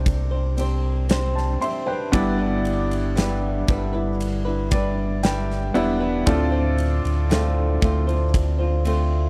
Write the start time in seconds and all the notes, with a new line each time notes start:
Already playing: C2 D4 G4 C5
0.06 kick, ride
0.31 D4 G4 C5
0.57 C4 D4 G4 C5, ride
1.09 C4 D4 G4 C5, snare, ride
1.35 C5 A5, snare
1.61 C4 D4 G4 C5 E5 C6, ride
1.86 D4 G4 B4 C5 G5
2.12 G1 G2 D3 G3 B3 D4 E4 G4 B4 D5, kick, ride
2.38 D4 E4 B4
2.65 ride
2.91 ride
3.16 G3 D4 E4 B4, snare, ride
3.67 G1 G3 D4 E4 B4, kick, ride
3.93 D4 E4 B4
4.20 ride
4.45 D4 E4 B4
4.71 G3 D4 E4 B4 D5, kick, ride
5.23 G3 D4 E4 B4 G5, snare, ride
5.50 snare
5.74 E1 G3 B3 D4 E4 G4 B4 E5, ride
6.00 D4 E4 B4
6.26 D2 A2 D3 A3 C4 D4 F4 A4 C5 D5, kick, ride
6.52 C4 F4 C5
6.78 ride
7.05 D2, ride
7.29 D3 A3 C4 F4 C5, snare, ride
7.81 D2 A3 C4 F4 C5, kick, ride
8.07 C4 F4 C5, ride
8.34 kick, ride
8.59 C4 F4 C5
8.85 A3 C4 F4 C5, ride